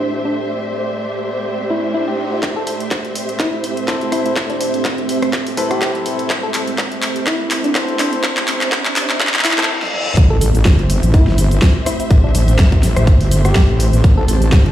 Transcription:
Already playing: A3 C4 E4 G4 A4 C5 D5 E5, riser
0.01 D4
0.25 D4
1.70 E4
1.94 E4
2.08 G4
2.43 A3 C4 A4 E5, kick, clap, closed hi-hat, riser
2.56 A4
2.67 A4, open hi-hat
2.80 closed hi-hat
2.91 kick, clap, closed hi-hat
3.05 closed hi-hat
3.15 open hi-hat
3.29 closed hi-hat
3.40 E4, kick, clap, closed hi-hat
3.64 open hi-hat
3.77 closed hi-hat
3.88 C4 E4 A4 C5, kick, clap, open hi-hat
4.01 closed hi-hat
4.12 E4, cross-stick, open hi-hat
4.26 E4, closed hi-hat
4.36 kick, clap, closed hi-hat
4.50 D4, closed hi-hat
4.60 D4, open hi-hat
4.74 closed hi-hat
4.85 kick, clap, closed hi-hat
4.98 closed hi-hat
5.09 open hi-hat
5.22 cross-stick, closed hi-hat
5.33 kick, clap, closed hi-hat
5.47 open hi-hat
5.57 C4 E4 A4 B4, open hi-hat
5.71 G4, cross-stick, closed hi-hat
5.82 kick, clap, closed hi-hat
5.95 closed hi-hat
6.06 open hi-hat
6.19 closed hi-hat
6.30 kick, clap, closed hi-hat
6.43 A4
6.54 A4, clap, open hi-hat
6.67 closed hi-hat
6.78 kick, clap, closed hi-hat
6.92 closed hi-hat
7.02 clap, open hi-hat
7.16 closed hi-hat
7.27 E4, kick, clap, closed hi-hat
7.51 clap, open hi-hat
7.64 D4, closed hi-hat
7.75 C4 D4 E4 A4 C5, kick, clap, open hi-hat
7.88 closed hi-hat
7.99 D4, clap, open hi-hat
8.13 closed hi-hat
8.23 kick, clap, closed hi-hat
8.37 clap, closed hi-hat
8.48 clap, open hi-hat
8.61 clap, closed hi-hat
8.72 kick, clap, closed hi-hat
8.85 clap, closed hi-hat
8.96 clap, open hi-hat
9.10 clap, closed hi-hat
9.20 kick, clap, closed hi-hat, reverse cymbal
9.27 clap
9.34 clap, open hi-hat
9.39 clap
9.45 E4, clap, open hi-hat
9.51 clap
9.58 C4 E4 A4 C5, clap, closed hi-hat
9.63 clap
9.82 snare
9.93 mid tom
10.06 mid tom
10.17 A1 A3 C4 G4 A4 E5, kick, closed hi-hat, impact, shaker
10.30 A4
10.40 A1 A4 E5, open hi-hat, shaker
10.55 closed hi-hat, shaker
10.65 G1, kick, snare, closed hi-hat, shaker
10.71 C5
10.79 closed hi-hat
10.90 open hi-hat, shaker
11.03 A1, closed hi-hat, shaker
11.14 E4, kick, closed hi-hat, shaker
11.27 G1, snare
11.38 open hi-hat, shaker
11.51 closed hi-hat, shaker
11.62 kick, snare, open hi-hat, shaker
11.86 E4, cross-stick, open hi-hat, shaker
12.00 E4, closed hi-hat, shaker
12.11 A1, kick, closed hi-hat, shaker
12.24 D4
12.35 A1 D4, open hi-hat, shaker
12.48 closed hi-hat, shaker
12.59 A1, kick, snare, closed hi-hat, shaker
12.72 kick, closed hi-hat
12.83 snare, open hi-hat, shaker
12.96 A1, cross-stick, closed hi-hat, shaker
13.07 kick, closed hi-hat, shaker
13.21 G1, open hi-hat
13.31 open hi-hat, shaker
13.45 G4, cross-stick, closed hi-hat, shaker
13.55 A1, kick, snare, closed hi-hat, shaker
13.69 A1
13.80 open hi-hat, shaker
13.93 A1, closed hi-hat, shaker
14.04 A1 D5, kick, closed hi-hat, shaker
14.17 A4
14.27 A1 A4 A5, open hi-hat, shaker
14.42 closed hi-hat, shaker
14.52 G1, kick, snare, closed hi-hat, shaker
14.66 closed hi-hat

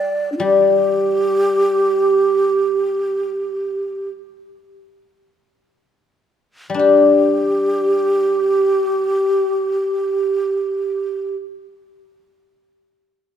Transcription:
Already playing: G3 D5
0.32 D4
0.37 G3 F4
0.43 G4
6.70 G3
6.74 D4
6.79 G4

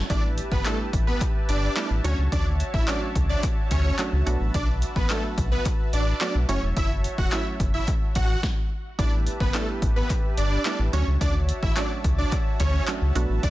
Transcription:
0.10 A1 G3 A3 B3 D4 E4 G4 B4 D5 E5, kick, closed hi-hat
0.38 closed hi-hat
0.52 G1 B3 B4, kick
0.65 G3 A3 B3 D4 E4 A4, clap, closed hi-hat
0.93 A1, kick, closed hi-hat
1.07 B3 B4
1.21 kick, clap, closed hi-hat
1.49 G1 D4 D5, closed hi-hat
1.76 G3 A3 B3 D4 E4 D5, clap, closed hi-hat
1.91 A1
2.04 D2 F#3 A3 C#4 D4 F#4 C#5, closed hi-hat
2.18 C#2
2.32 D2 D4 D5, kick, closed hi-hat
2.60 closed hi-hat
2.74 A1 E4 E5, kick
2.88 F#3 A3 C#4 D4 F#4 D5, clap, closed hi-hat
3.16 C#2, kick, closed hi-hat
3.29 D4 D5
3.43 kick, clap, closed hi-hat
3.71 D2 C#4 C#5, kick, closed hi-hat
3.99 F#3 A3 C#4 D4 F#4, clap, closed hi-hat
4.13 C#2
4.26 B1 F#3 A3 B3 D4 F#4 B4, closed hi-hat
4.40 A1
4.54 B1 D4 D5, kick, closed hi-hat
4.82 closed hi-hat
4.96 A1 B3 B4, kick
5.10 F#3 A3 B3 D4 F#4 A4, clap, closed hi-hat
5.38 B1, kick, closed hi-hat
5.52 B3 B4
5.65 kick, clap, closed hi-hat
5.93 A1 D4 D5, closed hi-hat
6.21 F#3 A3 B3 D4 F#4 D5, clap, closed hi-hat
6.35 B1
6.49 F#1 F#3 A3 C#4 E4 F#4 C#5 E5, closed hi-hat
6.63 E1
6.77 F#1 E4 E5, kick, closed hi-hat
7.04 closed hi-hat
7.18 E1 F#4 F#5, kick
7.32 F#3 A3 C#4 E4 F#4 E5, clap, closed hi-hat
7.60 F#1, kick, closed hi-hat
7.74 E4 E5
7.88 kick, clap, closed hi-hat
8.15 A1 F#4 F#5, kick, closed hi-hat
8.43 kick, snare
8.99 A1 G3 A3 B3 D4 E4 G4 B4 D5 E5 A5, kick, closed hi-hat
9.27 closed hi-hat
9.40 G1 B3 B4, kick
9.54 G3 A3 B3 D4 E4 A4, clap, closed hi-hat
9.82 A1, kick, closed hi-hat
9.96 B3 B4
10.10 kick, clap, closed hi-hat
10.37 G1 D4 D5, closed hi-hat
10.65 G3 A3 B3 D4 E4 D5, clap, closed hi-hat
10.79 A1
10.93 D2 F#3 A3 C#4 D4 F#4 C#5, closed hi-hat
11.07 C#2
11.21 D2 D4 D5, kick, closed hi-hat
11.49 closed hi-hat
11.63 A1 E4 E5, kick
11.76 F#3 A3 C#4 D4 F#4 D5, clap, closed hi-hat
12.04 C#2, kick, closed hi-hat
12.18 D4 D5
12.32 kick, clap, closed hi-hat
12.60 D2 C#4 C#5, kick, closed hi-hat
12.87 F#3 A3 C#4 D4 F#4, clap, closed hi-hat
13.02 C#2
13.15 B1 F#3 A3 B3 D4 F#4 B4, closed hi-hat
13.29 A1
13.43 B1 D4 D5, kick, closed hi-hat

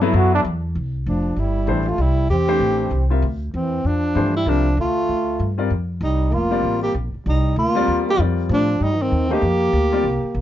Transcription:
Already playing: G2
0.01 F#3 B3 E4 A4 B4
0.13 F#2 F#4
0.34 D4
0.44 E2
0.75 C2
1.06 F1 F3 D4
1.36 G1 G3 E4
1.67 A1 E3 A3 D4 G4 C5
1.82 G3 E4
1.88 A3 F4
1.98 C2 G3 E4
2.29 E2 C4 G4
2.48 E3 A3 D4 G4 C5
2.60 A1
2.91 C2
3.10 G3 C4 F4 A#4 E5
3.22 D2
3.54 E2 E3 C4
3.84 F2 F3 D4
4.15 G2 E3 A3 D4 G4 C5
4.35 G3 E4
4.46 C2 F3 G3 C4 D4 F4 A#4 E5
4.77 D2 A3 F4
5.09 D2
5.39 G2
5.58 G3 C4 F4 A#4 D5
5.70 F2
6.01 C2 G3 D#4
6.31 F1 A#3 F4
6.51 G3 C4 F4 A#4 D5
6.63 A1
6.81 A#3 G4
6.94 A#1
7.14 muted upright bass stroke
7.26 C2 G3 D#4
7.56 D2 A#3 F4
7.75 G3 C4 F4 A#4 D5
7.88 D#2
8.05 A#3
8.10 G4
8.18 F2 G3 C4 F4 A#4 D5
8.49 A2 F3
8.53 D4
8.80 G2 G3 D#4
8.98 D#3
9.02 C4
9.12 D#2
9.28 A3 A#3 D4 G4 C5 D#5
9.33 G4
9.42 F2
9.73 D2
9.92 G3 C4 F4 A#4 D5
10.04 C2
10.23 muted upright bass stroke
10.35 A#1

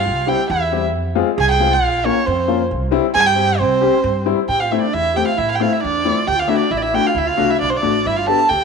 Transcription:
Already playing: F4 F5
0.06 C2
0.26 G3 C4 E4 G4 G5
0.50 E2 E4 E5
0.72 G3 C4 G4
0.94 F2
1.15 G#3 C4 F4
1.36 C2 G#4
1.40 G#5
1.51 G5
1.60 G#3 C4 F4
1.71 F4 F5
1.82 A#1
2.04 A#3 C#4 F4 C#5
2.26 F2 C4 C5
2.48 A#3 C#4 F4
2.71 C2
2.91 G3 C4 E4
3.14 G2 G#4 G#5
3.26 G4 G5
3.35 G3 C4 G4
3.59 C2 C4 C5
3.81 G3 C4 G4
4.04 G2
4.26 G3 C4 E4
4.48 A2 G4 G5
4.60 F4 F5
4.71 A3 C4 E4 E5
4.82 D4 D5
4.93 E2 E4 E5
5.14 A3 C4 G4 G5
5.25 F4 F5
5.36 A2 E4 E5
5.50 F5
5.55 G5
5.59 A3 C4 E4 F4 F5
5.70 E4 E5
5.82 E2 D4 D5
6.04 A3 C4 E4 F4
6.27 D2 G4 G5
6.36 F4 F5
6.48 A3 D4 E4 F#4 E5
6.58 D4 D5
6.71 A1 E4 E5
6.77 D5
6.82 E4 E5
6.94 A3 D4 F#4 G5
7.04 F4 F5
7.14 D2 E4 E5
7.26 F4 F5
7.37 C2 A3 D4 F#4
7.49 E4 E5
7.59 B1 D4 D5
7.69 C5
7.74 D4 D5
7.82 A1 A3 D4 F#4
8.06 G1 E4 E5
8.16 F4 F5
8.26 B3 D4 G4 A4 A5
8.48 D2 G4 G5

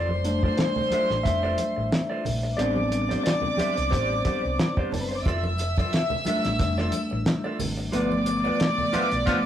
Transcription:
Already playing: F1 F4 C5 D5 C6
0.09 muted clean electric guitar stroke, high conga
0.24 G3 A3 D4, muted clean electric guitar stroke, closed hi-hat, muted conga
0.43 F4 A4 D5, kick, high conga
0.57 C5, muted clean electric guitar stroke, snare, closed hi-hat, muted conga
0.76 low conga
0.91 F4 A4 E5, muted fingered electric bass stroke, closed hi-hat, high conga
1.10 A1, muted clean electric guitar stroke, snare
1.23 F1 E5, muted clean electric guitar stroke, kick, closed hi-hat, muted conga, low conga
1.43 F4 A4 D5
1.58 muted clean electric guitar stroke, closed hi-hat, muted conga, high conga
1.76 A1, muted clean electric guitar stroke
1.92 muted clean electric guitar stroke, snare, closed hi-hat, muted conga
2.10 F4 A4 D5
2.25 A#1, muted clean electric guitar stroke, open hi-hat, low conga
2.43 muted clean electric guitar stroke
2.57 A1 G3 B3 C4 D4 G4 C5 D5 D6, closed hi-hat, muted conga
2.75 muted clean electric guitar stroke, high conga
2.92 muted clean electric guitar stroke, closed hi-hat
3.09 G4 C5 D5, closed hi-hat, high conga
3.24 D5, muted clean electric guitar stroke, snare, closed hi-hat, muted conga
3.41 low conga
3.57 G4 C5 E5, muted fingered electric bass stroke, closed hi-hat, muted conga, high conga
3.76 C2, muted clean electric guitar stroke, closed hi-hat
3.91 A1 G4 C5 D5, kick, closed hi-hat, muted conga, low conga
4.10 muted clean electric guitar stroke
4.25 G4 C5 D5, kick, closed hi-hat, muted conga, high conga
4.44 C2, muted clean electric guitar stroke
4.58 muted clean electric guitar stroke, snare, closed hi-hat, muted conga
4.77 G4 C5 D5, kick
4.91 F#1 A4 A5, muted clean electric guitar stroke, open hi-hat, muted conga, low conga
5.00 B4 B5
5.09 C5 C6, muted clean electric guitar stroke
5.16 D5 D6
5.24 F1 F4 A4 D5 E5 E6, kick, closed hi-hat, muted triangle
5.43 muted clean electric guitar stroke, high conga, muted triangle
5.58 muted clean electric guitar stroke, closed hi-hat, triangle
5.76 F4 A4 D5, kick, closed hi-hat, high conga, muted triangle
5.91 muted clean electric guitar stroke, snare, closed hi-hat, muted conga, muted triangle
6.10 low conga, muted triangle
6.25 G3 A3 D4 F4 A4 E5, muted fingered electric bass stroke, closed hi-hat, high conga, triangle
6.43 A1, muted clean electric guitar stroke, snare, closed hi-hat, muted triangle
6.59 F1, muted clean electric guitar stroke, kick, closed hi-hat, muted conga, low conga, muted triangle
6.77 F4 A4 D5, snare, muted triangle
6.92 muted clean electric guitar stroke, closed hi-hat, muted conga, high conga, triangle
7.10 A1, muted clean electric guitar stroke, muted triangle
7.25 muted clean electric guitar stroke, snare, closed hi-hat, muted conga, muted triangle
7.44 F4 A4 D5, muted triangle
7.59 G#1, muted clean electric guitar stroke, open hi-hat, muted conga, low conga, triangle
7.77 muted clean electric guitar stroke, muted triangle
7.92 G1 F3 A3 B3 F4 B4 D5 D6, closed hi-hat, muted triangle
8.11 muted clean electric guitar stroke, high conga, muted triangle
8.26 muted clean electric guitar stroke, closed hi-hat, muted conga, triangle
8.44 F4 B4 D5, high conga, muted triangle
8.60 muted clean electric guitar stroke, snare, closed hi-hat, muted triangle
8.78 low conga, muted triangle
8.93 D3 F3 B3 F4 B4 E5, muted fingered electric bass stroke, closed hi-hat, muted conga, high conga, triangle
9.11 B1, muted clean electric guitar stroke, closed hi-hat, muted triangle
9.26 D3 F3 A3 B3 F4, muted clean electric guitar stroke, kick, closed hi-hat, muted conga, low conga, muted triangle

